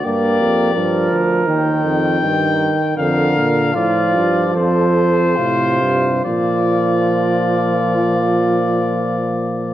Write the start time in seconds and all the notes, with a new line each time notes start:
0.04 G2 A#3 G4 D5
0.41 F2
0.74 G2 F3 A#4
1.12 D2
1.47 D#2 D#3 G5
1.84 F2
2.21 G2 D#3
2.97 F2 D3 A#4 F5
3.36 A#2
3.74 A2 F3 F4 D5
4.16 G2
4.54 F2 A4 C5
5.36 A2 C3 F4
5.81 G2
6.25 A#2 F3 F4 D5